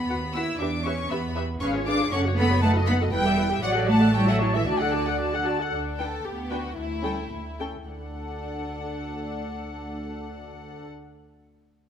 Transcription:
Already playing: cello section B3, violin section B5
0.10 double bass section D#2, viola section F#4 B4, violin section F#5
0.34 cello section E4, viola section F#4 B4, violin section F#5 E6
0.59 double bass section E2, cello section D4, viola section G4 B4, violin section E5 D6
0.84 cello section C#4, viola section G4 B4, violin section E5 C#6
1.10 double bass section E2, cello section B3, viola section G4 B4, violin section E5 B5
1.35 viola section G4 B4, violin section E5
1.60 double bass section G#1, cello section C#4, viola section G#4 B4, violin section F5 C#6
1.74 viola section F4 G#4, violin section C#5
1.87 cello section D4, viola section G#4 B4, violin section F5 D6
1.99 viola section F4 G#4, violin section C#5
2.11 double bass section F#1, cello section C#4, viola section C#4 A4, violin section F#5 C#6
2.25 viola section F#4, violin section C#5
2.37 cello section B3, viola section C#4 A4, violin section F#5 B5
2.51 viola section F#4, violin section C#5
2.62 cello section A3, viola section D#4 B4, violin section F#5 A5
2.74 viola section F#4 A4, violin section D#5
2.87 cello section B3, viola section D#4 B4, violin section F#5 B5
3.00 viola section F#4 A4, violin section D#5
3.11 double bass section E1, cello section G3, viola section E4 B4, violin section G5
3.25 viola section G4, violin section E5
3.37 viola section E4 B4, violin section G5
3.49 viola section G4, violin section E5
3.62 double bass section A1, cello section F#3, viola section F#4 D5, violin section F#5
3.75 viola section A4 F#5, violin section D5
3.87 cello section A3, viola section F#4 D5, violin section F#5 A5
4.01 viola section A4 F#5, violin section D5
4.14 cello section G3, viola section E4 C#5, violin section G5 A5
4.27 cello section F#3, viola section A4 E5, violin section E5 F#5
4.40 viola section E4 C#5, violin section A5
4.54 cello section E3, viola section A4 E5, violin section E5
4.66 double bass section D2, cello section D3, viola section F#4 D5, violin section D5 A5
4.80 viola section A4 F#5, violin section F#5
4.93 viola section F#4 D5, violin section A5
5.07 viola section A4 F#5, violin section F#5
5.19 viola section F#4 D5, violin section A5
5.33 viola section A4 F#5, violin section F#5
5.46 viola section F#4 D5, violin section A5
5.59 viola section A4 F#5, violin section F#5
5.72 double bass section D2, violin section D4
5.99 viola section D4 B4, violin section A4 G5
6.24 double bass section D2, cello section B3, violin section G4
6.50 viola section D4 B4, violin section F#4 G5
6.76 double bass section D2, cello section A3, violin section E4
7.02 cello section G3, viola section C#4 A4, violin section G5
7.31 double bass section D2, cello section A3
7.60 viola section C#4 A4, violin section G5
7.85 double bass section D2, cello section D2, viola section D4 A4, violin section D4 F#5

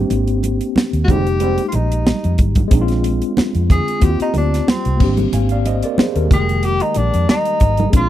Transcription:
Already playing: tine electric piano A#3 C4 D4 G4
0.10 fingered electric bass G#1, closed hi-hat, muted conga
0.27 closed hi-hat
0.43 closed hi-hat, muted conga
0.61 closed hi-hat
0.76 muted fingered electric bass stroke, snare, high conga
0.93 fingered electric bass D#2, closed hi-hat
1.04 trombone section G#2 G3 C4, tine electric piano G#3 A#3, tenor saxophone F#4
1.08 fingered electric bass F1, tine electric piano D#4 F#4, tenor saxophone G4, kick, closed hi-hat, low conga
1.18 tine electric piano G4
1.27 closed hi-hat
1.40 trombone section G#2 G3 C4, closed hi-hat
1.58 closed hi-hat
1.68 tenor saxophone F4
1.72 fingered electric bass A#1, tenor saxophone D#4, closed hi-hat, muted conga
1.92 closed hi-hat
2.07 snare, high conga
2.24 fingered electric bass F2, closed hi-hat
2.38 fingered electric bass G#1, kick, closed hi-hat, high conga
2.55 kick, closed hi-hat, high conga
2.68 fingered electric bass A#1, tine electric piano G#3 C4, kick, closed hi-hat, muted conga
2.72 tine electric piano D4 D#4
2.81 tine electric piano F4
2.88 snare, closed hi-hat
3.04 closed hi-hat, muted conga
3.22 closed hi-hat
3.37 muted fingered electric bass stroke, snare, high conga
3.55 fingered electric bass F2, closed hi-hat
3.70 tenor saxophone G#4, kick, closed hi-hat, low conga
3.88 closed hi-hat
4.00 fingered electric bass D#2, tine electric piano A#3 C4 F4 F#4, tenor saxophone G4, kick, closed hi-hat
4.10 tine electric piano G4
4.20 tenor saxophone D#4, muted fingered electric bass stroke, closed hi-hat
4.34 fingered electric bass D2, tenor saxophone D4, closed hi-hat, muted conga
4.54 snare, closed hi-hat
4.68 tenor saxophone C4, snare, high conga
4.85 fingered electric bass C2, closed hi-hat
4.97 fingered electric bass G#1, tine electric piano A#3 C4, kick, crash, high conga
5.02 tine electric piano D4 G4
5.17 closed hi-hat, high conga
5.33 fingered electric bass G#1, tine electric piano F5 G#5, closed hi-hat, muted conga
5.49 tine electric piano D5 F5, closed hi-hat
5.66 tine electric piano C5 D#5, closed hi-hat, muted conga
5.83 tine electric piano A#4 D5, closed hi-hat
5.98 tine electric piano G#4 C5, muted fingered electric bass stroke, snare, high conga
6.16 fingered electric bass D#2, tine electric piano G4 A#4, closed hi-hat
6.28 fingered electric bass F1, tine electric piano G#3 A#3, kick, low conga
6.32 tine electric piano D#3 G5, tenor saxophone G#4, closed hi-hat
6.49 closed hi-hat
6.63 tenor saxophone G4, closed hi-hat
6.80 tenor saxophone D#4, closed hi-hat
6.94 fingered electric bass A#1, tenor saxophone D4, closed hi-hat, muted conga
7.14 fingered electric bass F2, closed hi-hat
7.29 tenor saxophone D#4, snare, high conga
7.45 closed hi-hat
7.60 fingered electric bass G#1, kick, closed hi-hat, high conga
7.77 closed hi-hat, high conga
7.90 fingered electric bass A#1, tine electric piano G#3 C4, kick, closed hi-hat
7.94 tine electric piano D4 F4, tenor saxophone F4, muted conga

